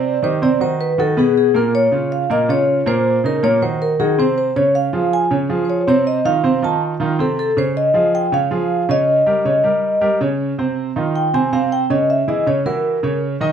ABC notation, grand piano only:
X:1
M:4/4
L:1/8
Q:1/4=159
K:Cphr
V:1 name="Grand piano"
[C,Cc] [E,EG] [C,Cc] [E,E_G]2 [^D,^D^F] [=B,,=B,=B]2 | [B,,B,B]2 [D,DF]2 [B,,B,B] [D,DF]2 [B,,B,B]- | [B,,B,B] [D,DE] [B,,B,B] [E,E_G]2 [E,EG] [C,Cc]2 | [D,Dd]2 [F,FA]2 [D,Dd] [F,FA]2 [C,Cc]- |
[C,Cc] [E,EF] [C,Cc] [E,EF]2 [E,EF] [C,Cc]2 | [D,Dd]2 [F,FA]2 [D,Dd] [F,FA]2 [D,Dd]- | [D,Dd] [G,GB] [D,Dd] [G,GB]2 [G,GB] [D,Dd]2 | [C,Cc]2 [E,EF]2 [C,Cc] [C,Cc]2 [D,Dd]- |
[D,Dd] [_F,_FA] [D,Dd] [F,F_G]2 [D,Dd]2 [E,Ee] |]